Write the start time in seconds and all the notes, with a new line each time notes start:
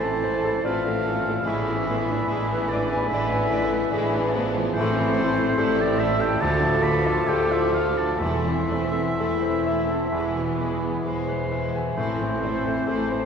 Already playing: A1 A2 E3 A3 C4 A4 C5 A5
0.02 E3 C4 A5
0.23 A3 E4 C5
0.27 A3
0.43 E3 C4 A4
0.62 A1 A2 D3 A3 C4 E4 F4 B4 F5
0.84 E3 A3 C4
1.02 E3 A3 E4 A4
1.21 E3 C4
1.29 A3
1.41 A2 E3 G#3 E4 G#4 B5
1.45 A1 A2 D3 E4 E5
1.62 B3 D4
1.67 E3
1.82 E3 G#3 E4
1.87 D3 B3
2.02 B3 D4
2.08 E3 D4
2.26 A1 A2 D3 G#3 E4 G#4
2.32 G#4
2.47 E3 B3 D4
2.54 B4
2.67 D3 G#3 D4 E4 B4 D5
2.73 D5
2.89 E3 B3 D4 G#5
3.08 A1 A2 D3 G#3 E4 E5 B5
3.13 E4 D5
3.28 E3 D4
3.32 B3 G#5
3.48 D3 G#3 E4
3.53 D5
3.69 E3 B3 D4 B4
3.89 A1 A2 D3 E3 G#3 E4 B5
3.93 G#4
4.10 E3 B3 D4
4.15 D4
4.31 D3 F3 E4
4.35 G#3 B3
4.52 E3 B3 D4
4.57 E3
4.73 A1 A2 E3 C4 E4 A4 C5
4.77 A2 A3 C6
4.94 C4
4.98 E3 C4
5.17 A3 E4
5.35 C4 E4
5.40 E3
5.57 A1 A2 G3 A3 E4 G4 A4 E6
5.78 E3 C4 D4 E4 D5
5.96 A3 E4 E5
6.02 A3
6.18 E3 C4 G4 G5 A5
6.40 D2 D3 F3 A3 F4 A4 A5 D6
6.59 D4
6.63 A2 F3
6.82 D3 A3 F4 B4 B5
7.04 F3 D4 F4 A4 A5
7.26 D2 D3 A3 F4 G4 A4 G5
7.48 F3 D4 E4 F4
7.52 E5
7.72 D3 A3 F4 F5
7.93 D4 D5
7.98 F3 A5
8.18 E1 E2 E3 A3 E4 A4 E5 C6
8.44 E3 C4
8.68 A3 C4 E4
8.90 C4
8.94 E3 E4
9.15 E1 E2 A3 E4
9.20 A4
9.38 E3 C4 C5
9.44 C4
9.64 A3 E5
9.69 E4
9.87 E3 C4 A5
9.92 C4
10.12 E1 E2 E3 G#3 B5
10.16 E4
10.35 B2 E3 B3
10.41 B3
10.56 G#3 B3 E4 G#4
10.61 G#3
10.79 B3 E4
10.83 E3 B3
11.03 E1 E2 G#3 E4 G#4 C5
11.08 G#3
11.27 E3 B3 B4
11.49 G#3 E5
11.54 G#3 E4
11.74 E3 B3 G#5
11.94 A1 A2 E3 A3 C4 E4 A4 C5 C6
12.19 E3 C4
12.41 A3 C4 E4
12.65 E3 C4 E4
12.85 A1 A2 A3 E4 A4 C5 A5
13.08 E3 C4 C5